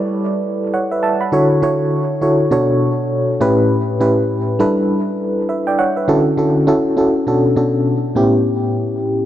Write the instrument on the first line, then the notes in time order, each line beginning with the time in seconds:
fm electric piano
Already playing: G3 E4 A4 B4 D5
0.74 C#5 F#5
0.91 B4 E5
1.03 E5 A5
1.21 F#5 B5
1.32 D3 E4 F#4 A4 C#5
1.62 D3 E4 F#4 A4 C#5
2.21 D3 E4 F#4 A4 C#5
2.51 B2 D4 F#4 A4 C#5
3.40 A2 C#4 E4 G4 B4
4.00 A2 C#4 E4 G4 B4
4.59 G3 D4 E4 A4 B4
5.49 B4 E5
5.67 D5 G5
5.79 C#5 F#5
5.97 B4 E5
6.08 D3 C#4 E4 F#4 A4
6.37 D3 C#4 E4 F#4 A4
6.67 C#4 E4 F#4 A4
6.97 C#4 E4 F#4 A4
7.27 B2 C#4 D4 F#4 A4
7.56 B2 C#4 D4 F#4 A4
8.15 A2 B3 C#4 E4 G4